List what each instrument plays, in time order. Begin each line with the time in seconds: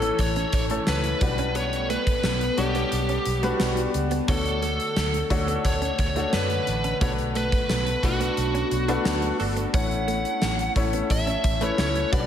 Already playing: grand piano E3 A3 C#4 A4, ambient pad A3 C#4 E4, lead electric guitar A4
0.02 clean electric guitar B3, closed hi-hat
0.19 fingered electric bass A1, lead electric guitar C#5, kick, closed hi-hat
0.36 clean electric guitar C#4, closed hi-hat
0.53 fingered electric bass A1, lead electric guitar C#5, muted clean electric guitar stroke, kick, closed hi-hat
0.70 grand piano E3 A3 C#4 A4, clean electric guitar A3, closed hi-hat
0.87 fingered electric bass C#2, clean electric guitar B3, lead electric guitar B4, snare, tambourine
1.04 closed hi-hat
1.21 fingered electric bass B1, grand piano G3 D4 F#4 B4, ambient pad B3 A4 F#5, muted clean electric guitar stroke, kick, closed hi-hat
1.38 clean electric guitar C#4, closed hi-hat
1.55 clean electric guitar B3, lead electric guitar C#5, closed hi-hat
1.73 closed hi-hat
1.90 clean electric guitar A3, lead electric guitar B4, closed hi-hat
2.07 muted clean electric guitar stroke, kick, closed hi-hat
2.23 fingered electric bass B1, clean electric guitar A3, snare, tambourine
2.41 muted clean electric guitar stroke, closed hi-hat
2.57 fingered electric bass B1, grand piano G3 D4 C#5 F#5, lead electric guitar G4, closed hi-hat
2.75 clean electric guitar B3, closed hi-hat
2.92 fingered electric bass B1, closed hi-hat
3.09 clean electric guitar C#4, closed hi-hat
3.26 fingered electric bass B1, muted clean electric guitar stroke, closed hi-hat
3.43 grand piano G3 D4 B4 F#5, clean electric guitar A3, lead electric guitar F#4, closed hi-hat
3.60 fingered electric bass B1, clean electric guitar B3, snare, tambourine
3.77 closed hi-hat
3.94 fingered electric bass C#2, muted clean electric guitar stroke, closed hi-hat
4.11 clean electric guitar B3, closed hi-hat
4.28 fingered electric bass D2, ambient pad D3 C#5, grand piano A3 D4 F#4 C#5, clean electric guitar B3, lead electric guitar A4, kick, closed hi-hat
4.46 closed hi-hat
4.62 clean electric guitar A3, closed hi-hat
4.79 muted clean electric guitar stroke, closed hi-hat
4.96 fingered electric bass D2, clean electric guitar A3, snare, tambourine
5.14 muted clean electric guitar stroke, closed hi-hat
5.30 fingered electric bass D2, grand piano A3 D4 F#4 C#5, kick, closed hi-hat
5.48 clean electric guitar B3, closed hi-hat
5.65 fingered electric bass D2, lead electric guitar C#5, kick, closed hi-hat
5.82 clean electric guitar C#4, closed hi-hat
5.99 fingered electric bass D2, lead electric guitar C#5, muted clean electric guitar stroke, kick, closed hi-hat
6.16 clean electric guitar A3, grand piano A3 D4 F#4 C#5, closed hi-hat
6.33 fingered electric bass F#2, clean electric guitar B3, lead electric guitar B4, snare, tambourine
6.50 closed hi-hat
6.67 fingered electric bass A1, muted clean electric guitar stroke, closed hi-hat
6.84 clean electric guitar C#4, closed hi-hat
7.01 fingered electric bass B1, grand piano A3 D4 F#4 B4, ambient pad A3 B3 D4, clean electric guitar B3, lead electric guitar C#5, kick, closed hi-hat
7.18 closed hi-hat
7.35 clean electric guitar A3, lead electric guitar B4, closed hi-hat
7.52 muted clean electric guitar stroke, kick, closed hi-hat
7.69 fingered electric bass B1, clean electric guitar A3, snare, tambourine
7.86 muted clean electric guitar stroke, closed hi-hat
8.03 fingered electric bass B1, grand piano A3 D4 F#4 B4, lead electric guitar F#4, kick, closed hi-hat
8.20 clean electric guitar B3, closed hi-hat
8.37 fingered electric bass B1, closed hi-hat
8.54 clean electric guitar C#4, closed hi-hat
8.71 fingered electric bass B1, muted clean electric guitar stroke, closed hi-hat
8.88 grand piano A3 D4 F#4 B4, clean electric guitar A3, analog polysynth D4 F#4 A4, closed hi-hat
9.05 fingered electric bass D2, clean electric guitar B3, snare, tambourine
9.22 closed hi-hat
9.40 fingered electric bass G1, analog polysynth D4 F#4 A4, muted clean electric guitar stroke, open hi-hat
9.57 clean electric guitar B3, closed hi-hat
9.73 fingered electric bass A1, grand piano A3 C#4 E4 C#5, clean electric guitar B3, ambient pad C#4 E4, lead electric guitar F#5, kick, closed hi-hat
9.91 closed hi-hat
10.08 clean electric guitar A3, closed hi-hat
10.25 muted clean electric guitar stroke, closed hi-hat
10.41 fingered electric bass A1, clean electric guitar A3, snare, tambourine
10.59 muted clean electric guitar stroke, closed hi-hat
10.76 fingered electric bass A1, grand piano A3 C#4 E4 C#5, kick, closed hi-hat
10.93 clean electric guitar B3, closed hi-hat
11.10 fingered electric bass A1, lead electric guitar E5, kick, closed hi-hat
11.27 clean electric guitar C#4, closed hi-hat
11.44 fingered electric bass A1, muted clean electric guitar stroke, kick, closed hi-hat
11.61 grand piano A3 C#4 E4 B4, clean electric guitar A3, lead electric guitar C#5, closed hi-hat
11.78 fingered electric bass C#2, clean electric guitar B3, lead electric guitar C#5, snare, tambourine
11.95 closed hi-hat
12.12 fingered electric bass B1, grand piano G3 D4 F#4 B4, ambient pad B3 F#4 A4, lead electric guitar D5, muted clean electric guitar stroke, kick, closed hi-hat